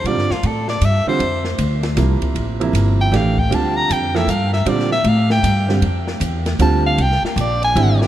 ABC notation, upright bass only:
X:1
M:3/4
L:1/8
Q:"Swing" 1/4=156
K:Gdor
V:1 name="Upright bass" clef=bass
(3B,, G,, F,, A,,2 G,, z | F,,2 D,,2 C,, z | A,,,2 G,,,2 A,,,2 | D,,2 F,,2 G,,2 |
B,,2 A,,2 G,,2 | F,,2 E,,2 D,,2 | C,, z B,,,2 _A,,,2 |]